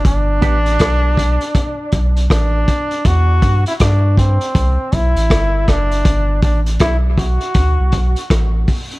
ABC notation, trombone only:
X:1
M:4/4
L:1/16
Q:"Swing 16ths" 1/4=80
K:G
V:1 name="Trombone"
D8- D3 z D4 | F3 E D2 C4 E4 D2- | D2 D2 E2 F6 z4 |]